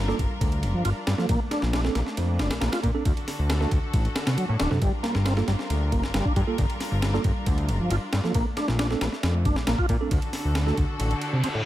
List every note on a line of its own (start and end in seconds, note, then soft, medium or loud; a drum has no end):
0.00 0.13 G1 medium
0.00 1.25 G3 medium
0.00 4.78 D4 medium
0.00 1.25 F4 medium
0.00 1.26 A#4 medium
0.08 0.16 A#3 medium
0.08 0.16 D4 medium
0.08 0.16 F4 medium
0.08 0.16 A4 medium
0.08 snare soft
0.19 0.26 G1 loud
0.19 kick medium
0.19 ride medium
0.41 0.65 D2 medium
0.41 kick loud
0.41 ride medium
0.52 ride soft
0.63 0.74 F1 medium
0.63 ride medium
0.74 0.83 G1 soft
0.74 0.84 F3 medium
0.85 0.92 G1 loud
0.85 0.90 F4 medium
0.85 ride medium
1.07 1.14 G2 loud
1.07 snare loud
1.07 ride medium
1.18 1.26 F3 medium
1.18 1.26 A#3 medium
1.18 1.26 F4 medium
1.18 1.26 A4 medium
1.18 snare soft
1.29 1.36 A#1 medium
1.29 3.04 A3 medium
1.29 1.40 A#3 medium
1.29 3.04 A#3 medium
1.29 kick loud
1.29 ride medium
1.51 1.62 D4 medium
1.51 snare medium
1.51 ride medium
1.62 1.89 A#1 loud
1.62 snare medium
1.73 1.81 D4 medium
1.73 snare loud
1.73 ride medium
1.84 1.92 C4 medium
1.84 1.92 D4 medium
1.84 1.92 A4 medium
1.84 snare medium
1.95 2.03 A#1 loud
1.95 2.00 A#3 medium
1.95 snare soft
1.95 ride medium
2.06 snare soft
2.17 2.41 F2 medium
2.17 ride medium
2.39 2.50 F1 medium
2.39 2.50 D4 medium
2.39 snare loud
2.39 ride medium
2.51 2.59 A#1 soft
2.51 snare loud
2.51 ride medium
2.61 2.69 A#1 loud
2.61 2.72 A#3 medium
2.61 snare loud
2.61 ride medium
2.72 2.80 F4 medium
2.72 snare loud
2.72 ride medium
2.83 2.91 A#2 medium
2.83 2.88 A#3 medium
2.83 kick medium
2.83 ride medium
2.95 3.02 C4 medium
2.95 3.02 D4 medium
2.95 3.02 A4 medium
3.05 3.13 D2 medium
3.05 4.80 D3 medium
3.05 4.80 F#4 medium
3.05 4.80 A4 medium
3.05 kick loud
3.05 ride medium
3.17 ride soft
3.28 snare soft
3.28 open hi-hat medium
3.39 3.66 D2 loud
3.50 snare loud
3.50 ride medium
3.61 3.69 A3 medium
3.61 3.69 D4 medium
3.61 3.69 F#4 medium
3.61 3.69 A4 medium
3.61 snare soft
3.71 3.79 D2 medium
3.71 kick medium
3.71 ride medium
3.94 4.08 A1 medium
3.94 kick loud
3.94 ride medium
4.05 ride soft
4.16 snare loud
4.16 ride medium
4.27 4.37 C3 medium
4.27 snare loud
4.27 ride medium
4.37 4.45 F#3 medium
4.37 ride medium
4.48 4.56 A2 medium
4.48 4.53 A3 medium
4.59 4.67 D1 medium
4.59 4.70 D4 medium
4.59 snare loud
4.59 ride medium
4.71 4.78 F#2 medium
4.71 4.81 C3 medium
4.71 4.79 D4 medium
4.71 4.79 F#4 medium
4.71 4.79 A4 medium
4.71 snare soft
4.82 4.89 G1 loud
4.82 4.92 G3 loud
4.82 8.31 G3 medium
4.82 10.08 D4 medium
4.82 8.31 F4 medium
4.82 8.31 A#4 medium
4.82 kick loud
4.82 ride medium
5.03 5.14 A#3 medium
5.03 snare medium
5.03 ride medium
5.15 5.42 G1 loud
5.15 snare medium
5.25 5.33 C4 medium
5.25 snare loud
5.25 ride medium
5.37 5.45 A#3 medium
5.37 5.45 F4 medium
5.37 5.45 A4 medium
5.37 snare medium
5.48 5.55 G1 loud
5.48 5.53 G3 medium
5.48 snare soft
5.48 ride medium
5.59 snare soft
5.70 5.94 D2 medium
5.70 ride medium
5.92 6.03 F1 medium
5.92 6.03 A#3 medium
5.92 kick medium
5.92 ride medium
6.03 6.12 G1 soft
6.03 snare medium
6.14 6.22 G1 loud
6.14 6.25 G3 medium
6.14 snare loud
6.14 ride medium
6.25 6.33 D4 medium
6.25 kick medium
6.36 6.44 G2 medium
6.36 6.41 G3 medium
6.36 kick medium
6.36 ride medium
6.47 6.55 A#3 medium
6.47 6.55 F4 medium
6.47 6.55 A4 medium
6.58 6.66 G1 loud
6.58 kick loud
6.58 ride medium
6.70 ride soft
6.80 snare soft
6.80 open hi-hat medium
6.92 7.19 G1 loud
7.02 snare loud
7.02 ride medium
7.14 7.22 A#3 medium
7.14 7.22 D4 medium
7.14 7.22 F4 medium
7.14 7.22 A4 medium
7.14 snare soft
7.24 7.32 G1 medium
7.24 kick medium
7.24 ride medium
7.46 7.71 D2 medium
7.46 kick loud
7.46 ride medium
7.58 ride soft
7.69 7.80 F1 medium
7.69 ride medium
7.80 7.89 G1 soft
7.80 7.90 F3 medium
7.90 7.98 G1 loud
7.90 7.96 F4 medium
7.90 ride medium
8.13 8.20 G2 loud
8.13 snare loud
8.13 ride medium
8.24 8.32 F3 medium
8.24 8.32 A#3 medium
8.24 8.32 F4 medium
8.24 8.32 A4 medium
8.24 snare soft
8.34 8.42 A#1 medium
8.34 10.10 A3 medium
8.34 10.10 A#3 medium
8.34 8.46 A#3 loud
8.34 kick loud
8.34 ride medium
8.57 8.68 D4 medium
8.57 snare medium
8.57 ride medium
8.68 8.95 A#1 loud
8.68 snare medium
8.79 8.87 D4 medium
8.79 snare loud
8.79 ride medium
8.90 8.98 C4 medium
8.90 8.98 D4 medium
8.90 8.98 A4 medium
8.90 snare soft
9.01 9.09 A#1 medium
9.01 9.06 A#3 medium
9.01 snare loud
9.01 ride medium
9.12 snare soft
9.23 9.47 F2 medium
9.23 snare loud
9.23 ride medium
9.45 9.56 F1 medium
9.45 9.56 D4 medium
9.45 kick medium
9.45 ride medium
9.56 9.65 A#1 soft
9.56 snare medium
9.67 9.75 A#1 loud
9.67 9.78 A#3 medium
9.67 snare loud
9.67 ride medium
9.78 9.86 F4 medium
9.78 kick medium
9.89 9.97 A#2 loud
9.89 9.94 A#3 medium
9.89 kick medium
9.89 ride medium
10.01 10.09 C4 medium
10.01 10.09 D4 medium
10.01 10.08 A4 medium
10.11 10.19 D2 loud
10.11 11.65 D3 medium
10.11 11.65 D4 medium
10.11 11.65 F#4 medium
10.11 11.65 A4 medium
10.11 kick loud
10.11 ride medium
10.22 ride soft
10.33 snare soft
10.33 open hi-hat medium
10.45 10.72 D2 medium
10.55 snare loud
10.55 ride medium
10.67 10.74 A3 medium
10.67 10.75 D4 medium
10.67 10.75 F#4 medium
10.67 10.75 A4 medium
10.67 snare soft
10.77 10.85 D2 loud
10.77 kick medium
10.77 ride medium
10.99 11.14 A1 medium
10.99 ride medium
10.99 reverse cymbal medium
11.11 ride soft
11.21 ride medium
11.33 11.43 C3 medium
11.44 11.49 C4 medium
11.44 ride medium
11.55 11.62 A2 medium